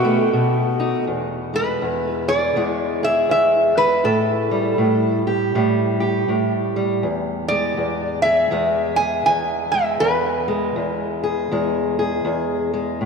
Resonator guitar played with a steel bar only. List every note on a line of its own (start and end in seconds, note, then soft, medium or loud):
0.00 1.05 F#4 medium
1.56 2.31 B4 medium
2.28 3.05 D5 loud
3.04 3.30 E5 loud
3.31 3.79 E5 medium
3.78 4.06 B4 medium
4.05 5.22 A4 medium
7.48 8.22 D5 medium
8.22 8.94 E5 loud
8.96 9.25 G#5 loud
9.26 9.70 G#5 medium
9.72 10.02 E5 loud
10.00 11.18 B4 medium